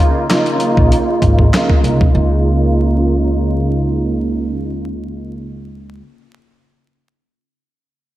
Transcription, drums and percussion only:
0.30 snare loud
0.30 clap medium
0.30 closed hi-hat loud
0.46 closed hi-hat medium
0.60 closed hi-hat medium
0.77 kick medium
0.92 closed hi-hat medium
1.22 kick medium
1.22 closed hi-hat medium
1.39 kick medium
1.54 snare loud
1.54 clap medium
1.54 closed hi-hat medium
1.70 kick loud
1.84 closed hi-hat medium
2.01 kick loud

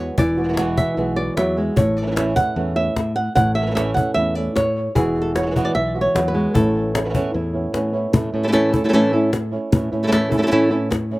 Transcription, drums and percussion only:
0.18 cajon bass medium
0.38 cajon slap soft
0.57 cajon slap loud
0.78 cajon bass medium
0.98 cajon slap soft
1.37 cajon slap medium
1.77 cajon bass loud
1.97 cajon slap soft
2.17 cajon slap loud
2.37 cajon bass medium
2.57 cajon slap soft
2.96 cajon bass medium
2.96 cajon slap medium
3.17 cajon slap soft
3.37 cajon bass medium
3.57 cajon slap soft
3.77 cajon slap loud
3.97 cajon bass medium
4.16 cajon slap soft
4.56 cajon bass medium
4.56 cajon slap medium
4.96 cajon bass medium
5.16 cajon slap soft
5.36 cajon slap loud
5.56 cajon bass medium
5.76 cajon slap soft
6.16 cajon bass medium
6.16 cajon slap loud
6.55 cajon bass medium
6.95 cajon slap loud
7.15 cajon bass medium
7.35 cajon slap soft
7.74 cajon slap medium
8.14 cajon bass medium
8.53 cajon slap medium
8.74 cajon bass medium
9.33 cajon slap medium
9.53 cajon slap soft
9.73 cajon bass medium
9.93 cajon slap soft
10.12 cajon slap loud
10.32 cajon bass medium
10.52 cajon slap soft
10.92 cajon bass medium
10.92 cajon slap medium
11.11 cajon slap soft

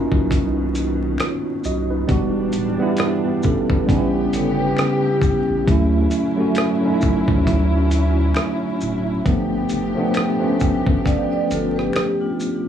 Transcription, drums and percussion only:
0.12 kick medium
0.31 kick medium
0.31 closed hi-hat medium
0.75 closed hi-hat medium
0.75 shaker medium
1.18 finger snap medium
1.18 cross-stick loud
1.18 closed hi-hat medium
1.64 shaker soft
2.09 kick loud
2.09 closed hi-hat medium
2.53 closed hi-hat soft
2.53 shaker soft
2.97 finger snap medium
2.97 cross-stick loud
2.97 closed hi-hat medium
3.43 kick medium
3.43 shaker soft
3.70 kick medium
3.89 kick medium
3.89 closed hi-hat medium
4.33 closed hi-hat medium
4.33 shaker medium
4.77 finger snap medium
4.77 cross-stick loud
4.77 closed hi-hat medium
5.22 kick loud
5.22 shaker soft
5.67 kick loud
5.67 closed hi-hat medium
6.11 closed hi-hat soft
6.11 shaker soft
6.55 finger snap medium
6.55 cross-stick loud
6.55 closed hi-hat medium
7.01 kick medium
7.01 shaker medium
7.28 kick loud
7.47 kick medium
7.47 closed hi-hat medium
7.91 closed hi-hat medium
7.91 shaker medium
8.35 finger snap medium
8.35 cross-stick loud
8.35 closed hi-hat medium
8.81 shaker soft
9.26 kick loud
9.26 closed hi-hat medium
9.69 closed hi-hat soft
9.69 shaker soft
10.14 finger snap medium
10.14 cross-stick loud
10.14 closed hi-hat medium
10.60 kick medium
10.60 shaker soft
10.86 kick loud
11.06 kick medium
11.06 closed hi-hat medium
11.51 closed hi-hat medium
11.51 shaker medium
11.79 cross-stick soft
11.93 finger snap medium
11.93 cross-stick loud
11.93 closed hi-hat medium
12.40 shaker soft

